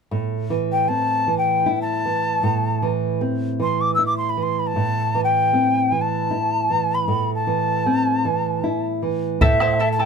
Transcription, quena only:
0.72 G5
0.88 A5
1.38 G5
1.82 A5
3.62 C6
3.81 D6
3.95 E6
4.06 D6
4.18 C6
4.30 B5
4.43 C6
4.59 B5
4.67 A5
5.24 G5
6.01 A5
6.95 B5
7.35 A5
9.42 E5
9.92 A5
10.01 G5

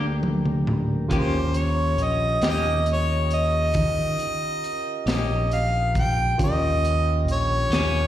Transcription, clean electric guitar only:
1.10 D#3 A#3 C#4 G4
2.43 D#3 A#3 C#4 G4
5.07 D#3 A#3 C#4 G4
7.71 D#3 A#3 C#4 G4

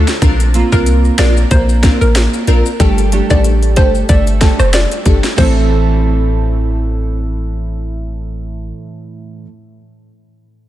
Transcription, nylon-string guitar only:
Already playing: D3 A3 D4 F4
0.54 A#3 C4 F4
1.51 A#3
2.80 G3
3.12 A3 D4 G4
4.09 A3
5.36 A2 E3 A3 C4
5.41 E4 A4

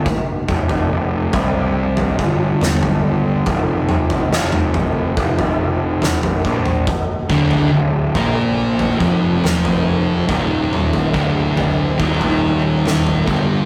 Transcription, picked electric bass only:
0.49 F1
0.91 F1
1.33 C2
2.19 G1
3.47 F1
4.31 F1
5.17 F1
6.45 A#1
7.30 D1
7.73 D1
8.16 A#1
9.00 F1
10.29 D#1
11.14 D1
12.00 D#1
13.28 G1

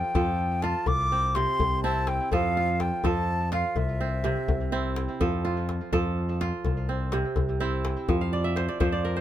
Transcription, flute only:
Already playing: G5
0.62 A5
0.87 D6
1.35 C6
1.83 A5
2.08 G5
2.33 F5
2.81 G5
3.06 A5
3.53 F5
3.77 E5

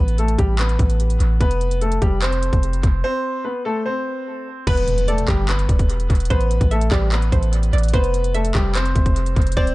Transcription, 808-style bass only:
Already playing: A1
0.39 A1
0.79 A1
1.20 A1
1.41 F1
2.02 F1
2.53 F1
2.83 F1
4.67 E1
5.28 G1
5.69 E1
6.10 E1
6.30 A1
6.61 A1
6.92 A1
7.32 A1
7.73 A1
7.94 F1
8.55 F1
8.96 F1
9.36 F1
9.57 D1

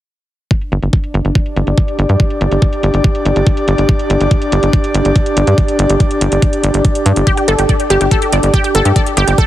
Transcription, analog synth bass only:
0.72 G1
0.82 G1
1.14 G1
1.25 G1
1.56 G1
1.67 G1
1.99 G1
2.09 G2
2.41 G1
2.52 G1
2.83 G1
2.94 G1
3.25 G1
3.36 G1
3.68 G1
3.78 G1
4.10 G1
4.21 G1
4.52 G1
4.63 G1
4.94 G1
5.05 G1
5.37 G1
5.47 G2
5.79 G1
5.89 G1
6.21 G1
6.32 G1
6.63 G1
6.74 G1
7.06 G2
7.16 G1
7.48 G1
7.59 G1
7.90 G1
8.01 G1
8.33 G1
8.43 G1
8.75 G1
8.85 G2
9.17 G1
9.28 G1

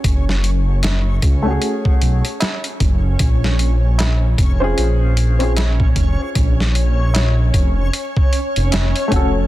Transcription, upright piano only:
1.42 A3 C#4
1.48 F#4 G#4
4.60 C#4 F4 G#4 C5
5.39 C4 C#4 F4 G#4
9.08 A3 C#4
9.13 F#4 A4

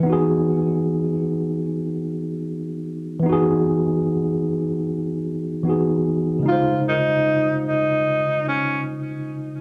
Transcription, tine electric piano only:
0.00 E3 B3
0.06 D#4 F#4
0.13 G#4
3.20 E3 B3
3.26 D#4 F#4
3.32 G#4
5.63 E3 B3 D#4
5.68 F#4 G#4
6.39 C#3 G#3
6.46 D#4 F4
6.52 C5

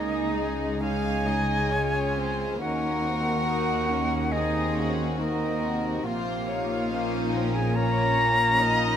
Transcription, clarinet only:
Already playing: D#4
0.84 G#4
2.61 F#4
4.32 D#4
5.18 D#4
6.05 F4
7.55 G#4
7.76 A#4

